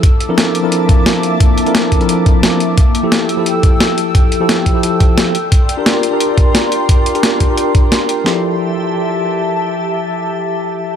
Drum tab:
HH |x-x-x-x-x-x-x-x-|x-xxx-xxx-x-x-x-|x-x-x-x-x-x-x-x-|x-x-x-x-x-x-x-x-|
SD |----o-------o---|----o-------o---|----o-------o---|----o-------o---|
BD |o---------o-----|o-----o---o-----|o---------o-----|o-----o---o-----|

HH |x-x-x-x-x-x-x-x-|x-xxx-x-x-x-x-x-|----------------|----------------|
SD |----o-------o---|----o-------o---|o---------------|----------------|
BD |o---------o-----|o-----o---o-----|----------------|----------------|